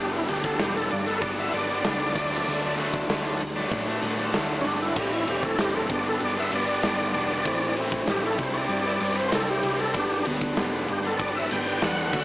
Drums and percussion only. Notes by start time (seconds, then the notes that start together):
0.29 ride
0.44 kick
0.59 snare, ride
0.91 ride
1.22 kick, ride
1.53 snare, ride
1.84 snare, ride
2.15 kick, crash
2.78 ride
2.94 kick
3.09 snare, ride
3.41 ride
3.71 kick, ride
4.02 snare, ride
4.34 snare, ride
4.65 ride
4.96 kick, crash
5.28 ride
5.43 kick
5.58 snare, ride
5.90 kick, ride
6.20 ride
6.52 ride
6.83 snare, ride
7.14 ride
7.45 kick, ride
7.77 ride
7.92 kick
8.07 snare, ride
8.38 kick, ride
8.69 ride
9.00 ride
9.32 snare, ride
9.63 ride
9.94 kick, ride
10.25 ride
10.41 kick
10.57 snare, ride
10.88 ride
11.19 kick, ride
11.51 snare, ride
11.82 snare, ride
12.13 kick, crash